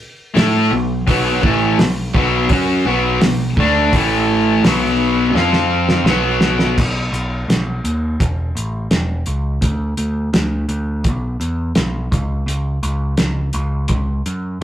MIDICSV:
0, 0, Header, 1, 4, 480
1, 0, Start_track
1, 0, Tempo, 712589
1, 730, Time_signature, 4, 2, 24, 8
1, 9855, End_track
2, 0, Start_track
2, 0, Title_t, "Distorted electric guitar"
2, 0, Program_c, 0, 30
2, 230, Note_on_c, 0, 57, 82
2, 233, Note_on_c, 0, 64, 88
2, 237, Note_on_c, 0, 69, 87
2, 473, Note_off_c, 0, 57, 0
2, 474, Note_off_c, 0, 64, 0
2, 476, Note_off_c, 0, 69, 0
2, 478, Note_on_c, 0, 47, 59
2, 479, Note_on_c, 0, 54, 73
2, 676, Note_off_c, 0, 47, 0
2, 676, Note_off_c, 0, 54, 0
2, 719, Note_on_c, 0, 47, 102
2, 723, Note_on_c, 0, 54, 109
2, 726, Note_on_c, 0, 59, 111
2, 957, Note_off_c, 0, 47, 0
2, 958, Note_off_c, 0, 54, 0
2, 960, Note_off_c, 0, 59, 0
2, 961, Note_on_c, 0, 52, 95
2, 963, Note_on_c, 0, 45, 84
2, 969, Note_on_c, 0, 57, 110
2, 1197, Note_off_c, 0, 52, 0
2, 1199, Note_off_c, 0, 45, 0
2, 1201, Note_off_c, 0, 57, 0
2, 1212, Note_on_c, 0, 47, 61
2, 1212, Note_on_c, 0, 54, 71
2, 1402, Note_off_c, 0, 47, 0
2, 1402, Note_off_c, 0, 54, 0
2, 1445, Note_on_c, 0, 47, 101
2, 1447, Note_on_c, 0, 54, 104
2, 1449, Note_on_c, 0, 59, 103
2, 1676, Note_off_c, 0, 54, 0
2, 1679, Note_off_c, 0, 47, 0
2, 1681, Note_off_c, 0, 59, 0
2, 1684, Note_on_c, 0, 54, 85
2, 1685, Note_on_c, 0, 61, 105
2, 1688, Note_on_c, 0, 66, 107
2, 1918, Note_off_c, 0, 54, 0
2, 1919, Note_off_c, 0, 61, 0
2, 1920, Note_off_c, 0, 66, 0
2, 1930, Note_on_c, 0, 47, 92
2, 1931, Note_on_c, 0, 59, 95
2, 1933, Note_on_c, 0, 54, 96
2, 2161, Note_off_c, 0, 47, 0
2, 2161, Note_off_c, 0, 59, 0
2, 2162, Note_off_c, 0, 54, 0
2, 2174, Note_on_c, 0, 47, 62
2, 2177, Note_on_c, 0, 54, 61
2, 2362, Note_off_c, 0, 47, 0
2, 2363, Note_off_c, 0, 54, 0
2, 2420, Note_on_c, 0, 50, 90
2, 2423, Note_on_c, 0, 57, 91
2, 2424, Note_on_c, 0, 62, 102
2, 2645, Note_off_c, 0, 50, 0
2, 2647, Note_off_c, 0, 57, 0
2, 2647, Note_off_c, 0, 62, 0
2, 2661, Note_on_c, 0, 45, 96
2, 2668, Note_on_c, 0, 52, 99
2, 2669, Note_on_c, 0, 57, 112
2, 3125, Note_off_c, 0, 45, 0
2, 3129, Note_off_c, 0, 52, 0
2, 3129, Note_off_c, 0, 57, 0
2, 3135, Note_on_c, 0, 47, 90
2, 3135, Note_on_c, 0, 54, 98
2, 3138, Note_on_c, 0, 59, 104
2, 3602, Note_off_c, 0, 47, 0
2, 3602, Note_off_c, 0, 54, 0
2, 3604, Note_off_c, 0, 59, 0
2, 3606, Note_on_c, 0, 53, 87
2, 3608, Note_on_c, 0, 60, 93
2, 3612, Note_on_c, 0, 65, 98
2, 4077, Note_off_c, 0, 53, 0
2, 4078, Note_off_c, 0, 60, 0
2, 4081, Note_off_c, 0, 65, 0
2, 4084, Note_on_c, 0, 47, 80
2, 4085, Note_on_c, 0, 54, 74
2, 4088, Note_on_c, 0, 59, 97
2, 4557, Note_off_c, 0, 47, 0
2, 4557, Note_off_c, 0, 54, 0
2, 4558, Note_off_c, 0, 59, 0
2, 9855, End_track
3, 0, Start_track
3, 0, Title_t, "Picked electric bass"
3, 0, Program_c, 1, 34
3, 240, Note_on_c, 1, 45, 97
3, 468, Note_off_c, 1, 45, 0
3, 479, Note_on_c, 1, 35, 82
3, 707, Note_off_c, 1, 35, 0
3, 724, Note_on_c, 1, 35, 87
3, 949, Note_off_c, 1, 35, 0
3, 960, Note_on_c, 1, 33, 95
3, 1187, Note_off_c, 1, 33, 0
3, 1201, Note_on_c, 1, 35, 78
3, 1427, Note_off_c, 1, 35, 0
3, 1444, Note_on_c, 1, 35, 104
3, 1669, Note_off_c, 1, 35, 0
3, 1677, Note_on_c, 1, 42, 85
3, 1905, Note_off_c, 1, 42, 0
3, 1921, Note_on_c, 1, 35, 88
3, 2147, Note_off_c, 1, 35, 0
3, 2166, Note_on_c, 1, 35, 84
3, 2389, Note_off_c, 1, 35, 0
3, 2402, Note_on_c, 1, 38, 99
3, 2627, Note_off_c, 1, 38, 0
3, 2644, Note_on_c, 1, 33, 90
3, 3097, Note_off_c, 1, 33, 0
3, 3123, Note_on_c, 1, 35, 87
3, 3576, Note_off_c, 1, 35, 0
3, 3597, Note_on_c, 1, 41, 92
3, 4053, Note_off_c, 1, 41, 0
3, 4071, Note_on_c, 1, 35, 96
3, 4560, Note_off_c, 1, 35, 0
3, 4563, Note_on_c, 1, 35, 76
3, 4772, Note_off_c, 1, 35, 0
3, 4795, Note_on_c, 1, 35, 82
3, 5007, Note_off_c, 1, 35, 0
3, 5040, Note_on_c, 1, 35, 84
3, 5251, Note_off_c, 1, 35, 0
3, 5282, Note_on_c, 1, 39, 89
3, 5492, Note_off_c, 1, 39, 0
3, 5522, Note_on_c, 1, 28, 86
3, 5732, Note_off_c, 1, 28, 0
3, 5762, Note_on_c, 1, 33, 74
3, 5972, Note_off_c, 1, 33, 0
3, 6000, Note_on_c, 1, 28, 93
3, 6211, Note_off_c, 1, 28, 0
3, 6243, Note_on_c, 1, 37, 87
3, 6452, Note_off_c, 1, 37, 0
3, 6475, Note_on_c, 1, 38, 87
3, 6688, Note_off_c, 1, 38, 0
3, 6720, Note_on_c, 1, 38, 89
3, 6931, Note_off_c, 1, 38, 0
3, 6959, Note_on_c, 1, 38, 85
3, 7171, Note_off_c, 1, 38, 0
3, 7198, Note_on_c, 1, 38, 85
3, 7437, Note_on_c, 1, 35, 79
3, 7447, Note_off_c, 1, 38, 0
3, 7650, Note_off_c, 1, 35, 0
3, 7678, Note_on_c, 1, 40, 72
3, 7891, Note_off_c, 1, 40, 0
3, 7922, Note_on_c, 1, 35, 87
3, 8133, Note_off_c, 1, 35, 0
3, 8161, Note_on_c, 1, 37, 83
3, 8372, Note_off_c, 1, 37, 0
3, 8395, Note_on_c, 1, 37, 85
3, 8609, Note_off_c, 1, 37, 0
3, 8641, Note_on_c, 1, 37, 90
3, 8853, Note_off_c, 1, 37, 0
3, 8875, Note_on_c, 1, 37, 84
3, 9090, Note_off_c, 1, 37, 0
3, 9121, Note_on_c, 1, 37, 89
3, 9333, Note_off_c, 1, 37, 0
3, 9353, Note_on_c, 1, 37, 82
3, 9569, Note_off_c, 1, 37, 0
3, 9606, Note_on_c, 1, 42, 79
3, 9816, Note_off_c, 1, 42, 0
3, 9855, End_track
4, 0, Start_track
4, 0, Title_t, "Drums"
4, 245, Note_on_c, 9, 46, 54
4, 247, Note_on_c, 9, 38, 117
4, 313, Note_off_c, 9, 46, 0
4, 315, Note_off_c, 9, 38, 0
4, 725, Note_on_c, 9, 36, 104
4, 725, Note_on_c, 9, 46, 60
4, 792, Note_off_c, 9, 36, 0
4, 793, Note_off_c, 9, 46, 0
4, 965, Note_on_c, 9, 36, 102
4, 1033, Note_off_c, 9, 36, 0
4, 1206, Note_on_c, 9, 46, 59
4, 1208, Note_on_c, 9, 38, 99
4, 1273, Note_off_c, 9, 46, 0
4, 1275, Note_off_c, 9, 38, 0
4, 1445, Note_on_c, 9, 36, 106
4, 1513, Note_off_c, 9, 36, 0
4, 1678, Note_on_c, 9, 46, 58
4, 1683, Note_on_c, 9, 36, 115
4, 1746, Note_off_c, 9, 46, 0
4, 1751, Note_off_c, 9, 36, 0
4, 2165, Note_on_c, 9, 46, 63
4, 2167, Note_on_c, 9, 38, 119
4, 2232, Note_off_c, 9, 46, 0
4, 2234, Note_off_c, 9, 38, 0
4, 2405, Note_on_c, 9, 36, 93
4, 2473, Note_off_c, 9, 36, 0
4, 2647, Note_on_c, 9, 36, 107
4, 2648, Note_on_c, 9, 46, 60
4, 2715, Note_off_c, 9, 36, 0
4, 2715, Note_off_c, 9, 46, 0
4, 3129, Note_on_c, 9, 46, 57
4, 3131, Note_on_c, 9, 38, 109
4, 3196, Note_off_c, 9, 46, 0
4, 3198, Note_off_c, 9, 38, 0
4, 3612, Note_on_c, 9, 38, 61
4, 3680, Note_off_c, 9, 38, 0
4, 3725, Note_on_c, 9, 38, 61
4, 3792, Note_off_c, 9, 38, 0
4, 3965, Note_on_c, 9, 38, 78
4, 4033, Note_off_c, 9, 38, 0
4, 4082, Note_on_c, 9, 38, 87
4, 4150, Note_off_c, 9, 38, 0
4, 4316, Note_on_c, 9, 38, 94
4, 4383, Note_off_c, 9, 38, 0
4, 4441, Note_on_c, 9, 38, 88
4, 4508, Note_off_c, 9, 38, 0
4, 4566, Note_on_c, 9, 36, 109
4, 4568, Note_on_c, 9, 49, 93
4, 4633, Note_off_c, 9, 36, 0
4, 4635, Note_off_c, 9, 49, 0
4, 4808, Note_on_c, 9, 42, 54
4, 4875, Note_off_c, 9, 42, 0
4, 5051, Note_on_c, 9, 42, 81
4, 5053, Note_on_c, 9, 38, 96
4, 5119, Note_off_c, 9, 42, 0
4, 5121, Note_off_c, 9, 38, 0
4, 5286, Note_on_c, 9, 42, 60
4, 5354, Note_off_c, 9, 42, 0
4, 5525, Note_on_c, 9, 36, 114
4, 5528, Note_on_c, 9, 42, 87
4, 5593, Note_off_c, 9, 36, 0
4, 5595, Note_off_c, 9, 42, 0
4, 5771, Note_on_c, 9, 42, 61
4, 5838, Note_off_c, 9, 42, 0
4, 6001, Note_on_c, 9, 42, 82
4, 6003, Note_on_c, 9, 38, 108
4, 6068, Note_off_c, 9, 42, 0
4, 6070, Note_off_c, 9, 38, 0
4, 6237, Note_on_c, 9, 42, 59
4, 6304, Note_off_c, 9, 42, 0
4, 6480, Note_on_c, 9, 42, 82
4, 6482, Note_on_c, 9, 36, 103
4, 6548, Note_off_c, 9, 42, 0
4, 6549, Note_off_c, 9, 36, 0
4, 6718, Note_on_c, 9, 42, 59
4, 6786, Note_off_c, 9, 42, 0
4, 6962, Note_on_c, 9, 42, 77
4, 6964, Note_on_c, 9, 38, 101
4, 7030, Note_off_c, 9, 42, 0
4, 7032, Note_off_c, 9, 38, 0
4, 7199, Note_on_c, 9, 42, 59
4, 7266, Note_off_c, 9, 42, 0
4, 7439, Note_on_c, 9, 42, 76
4, 7442, Note_on_c, 9, 36, 106
4, 7506, Note_off_c, 9, 42, 0
4, 7509, Note_off_c, 9, 36, 0
4, 7684, Note_on_c, 9, 42, 54
4, 7751, Note_off_c, 9, 42, 0
4, 7917, Note_on_c, 9, 42, 79
4, 7919, Note_on_c, 9, 38, 111
4, 7984, Note_off_c, 9, 42, 0
4, 7986, Note_off_c, 9, 38, 0
4, 8165, Note_on_c, 9, 36, 94
4, 8168, Note_on_c, 9, 42, 54
4, 8232, Note_off_c, 9, 36, 0
4, 8235, Note_off_c, 9, 42, 0
4, 8407, Note_on_c, 9, 42, 70
4, 8475, Note_off_c, 9, 42, 0
4, 8642, Note_on_c, 9, 42, 58
4, 8710, Note_off_c, 9, 42, 0
4, 8874, Note_on_c, 9, 42, 82
4, 8876, Note_on_c, 9, 38, 100
4, 8942, Note_off_c, 9, 42, 0
4, 8944, Note_off_c, 9, 38, 0
4, 9113, Note_on_c, 9, 42, 61
4, 9180, Note_off_c, 9, 42, 0
4, 9350, Note_on_c, 9, 42, 82
4, 9360, Note_on_c, 9, 36, 101
4, 9418, Note_off_c, 9, 42, 0
4, 9427, Note_off_c, 9, 36, 0
4, 9604, Note_on_c, 9, 42, 58
4, 9672, Note_off_c, 9, 42, 0
4, 9855, End_track
0, 0, End_of_file